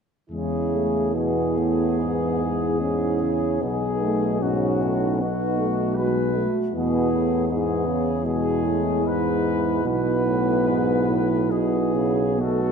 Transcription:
0.30 3.58 E2 soft
0.30 1.16 C#3 soft
0.30 0.69 G#3 soft
0.30 2.76 E4 soft
0.30 1.11 G#4 soft
0.73 1.15 A3 soft
1.15 1.58 B2 soft
1.15 1.97 B3 soft
1.15 3.58 G#4 soft
1.57 2.01 A2 soft
1.98 2.80 G#2 soft
1.98 2.39 B3 soft
2.40 2.80 G#3 soft
2.79 3.23 G#2 soft
2.79 3.61 C#4 soft
2.79 3.60 E4 soft
3.21 3.64 C#3 soft
3.61 6.45 B1 soft
3.61 4.44 B2 soft
3.61 4.02 B3 soft
3.61 5.18 D#4 soft
3.61 4.42 G#4 soft
4.02 4.42 A3 soft
4.41 4.84 G#2 soft
4.41 5.18 C#4 soft
4.41 5.20 F#4 soft
4.82 5.23 A2 soft
5.19 6.49 B2 soft
5.19 5.58 B3 soft
5.19 5.95 D#4 soft
5.19 5.96 F#4 soft
5.57 5.96 A3 soft
5.95 6.35 G#3 soft
5.95 6.74 F#4 soft
5.95 6.56 B4 soft
6.34 6.74 A3 soft
6.73 9.83 E2 soft
6.73 7.09 B2 soft
6.73 7.46 B3 soft
6.73 7.48 E4 soft
6.73 7.46 G#4 soft
7.12 7.52 A2 soft
7.47 7.88 G#2 soft
7.47 8.07 B3 soft
7.47 8.24 E4 soft
7.47 8.23 G#4 soft
7.86 8.26 C#3 soft
8.24 8.66 B2 soft
8.24 9.83 G#3 soft
8.24 12.22 E4 soft
8.24 9.04 G#4 soft
8.64 9.04 A2 soft
9.04 9.86 G#2 soft
9.04 9.85 B4 soft
9.85 12.72 B1 soft
9.85 10.25 B2 soft
9.85 11.48 B3 soft
9.85 11.49 B4 soft
10.26 10.69 A2 soft
10.67 11.11 G#2 soft
11.09 11.53 A2 soft
11.50 11.96 B2 soft
11.50 12.37 B3 soft
11.50 12.39 G#4 soft
11.94 12.40 C#3 soft
12.39 12.72 B2 soft
12.39 12.72 A3 soft
12.39 12.72 F#4 soft
12.39 12.72 A4 soft

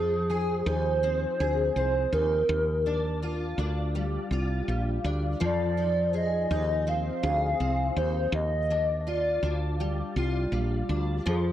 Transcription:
0.00 0.62 F2 loud
0.00 3.06 F3 medium
0.00 0.66 D#4 medium
0.00 0.68 G#4 loud
0.30 1.39 G#4 medium
0.66 1.25 D#2 medium
0.66 2.12 D#4 medium
0.66 1.76 C5 loud
1.03 1.75 C4 medium
1.40 1.69 D2 medium
1.40 2.57 G#4 medium
1.76 2.05 C2 medium
1.76 2.56 C4 medium
1.76 2.15 C5 loud
2.12 2.42 D#2 medium
2.12 2.89 D#4 medium
2.12 3.59 A#4 loud
2.49 3.55 D#2 loud
2.86 3.57 D4 medium
3.22 4.32 F4 medium
3.58 4.17 D2 medium
3.58 5.04 D4 medium
3.95 4.67 G3 medium
4.31 4.60 C2 medium
4.31 5.77 F4 medium
4.68 4.97 A#1 medium
4.68 5.40 G3 medium
5.04 5.34 D2 medium
5.04 5.49 D4 medium
5.40 6.47 F2 medium
5.40 8.90 F3 medium
5.44 6.12 D5 loud
5.77 6.50 D#4 medium
6.13 7.22 G#4 medium
6.13 6.90 D#5 loud
6.51 7.09 D#2 medium
6.51 7.97 D#4 medium
6.87 7.59 C4 medium
6.87 7.97 F5 loud
7.23 7.53 D2 medium
7.23 8.40 G#4 medium
7.60 7.89 C2 medium
7.60 8.41 C4 medium
7.96 8.26 D#2 medium
7.96 8.73 D#4 medium
7.96 8.31 C5 medium
8.32 9.38 D#2 loud
8.32 9.01 D#5 loud
8.70 9.42 D4 medium
9.01 9.09 D#5 medium
9.07 10.16 F4 medium
9.07 9.80 D5 medium
9.43 10.01 D2 medium
9.43 10.88 D4 medium
9.80 10.51 G3 medium
10.16 10.45 C2 medium
10.16 11.52 F4 medium
10.52 10.81 A#1 medium
10.52 11.25 G3 medium
10.89 11.18 D2 medium
10.89 11.33 D4 medium
11.26 11.52 F2 loud
11.26 11.52 F3 medium
11.26 11.52 G#4 medium

